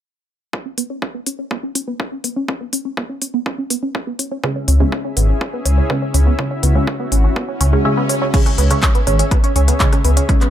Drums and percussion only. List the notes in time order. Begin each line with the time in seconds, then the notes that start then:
0.53 kick
0.78 open hi-hat
1.02 kick
1.26 open hi-hat
1.51 kick
1.75 open hi-hat
2.00 kick
2.24 open hi-hat
2.48 kick
2.73 open hi-hat
2.97 kick
3.22 open hi-hat
3.46 kick
3.70 open hi-hat
3.95 kick
4.19 open hi-hat
4.44 kick
4.68 open hi-hat
4.92 kick
5.17 open hi-hat
5.41 kick
5.66 open hi-hat
5.90 kick
6.14 open hi-hat
6.39 kick
6.63 open hi-hat
6.87 kick
7.12 open hi-hat
7.36 kick
7.61 open hi-hat
8.09 open hi-hat
8.34 kick, closed hi-hat, crash
8.46 cross-stick, closed hi-hat
8.58 open hi-hat
8.70 cross-stick, closed hi-hat
8.83 kick, clap, closed hi-hat
8.95 closed hi-hat
9.07 cross-stick, open hi-hat
9.19 closed hi-hat
9.31 kick, cross-stick, closed hi-hat
9.44 closed hi-hat
9.56 open hi-hat
9.68 cross-stick, closed hi-hat
9.80 kick, clap, closed hi-hat
9.92 cross-stick, closed hi-hat
10.04 open hi-hat
10.17 closed hi-hat
10.29 kick, cross-stick, closed hi-hat
10.41 clap, closed hi-hat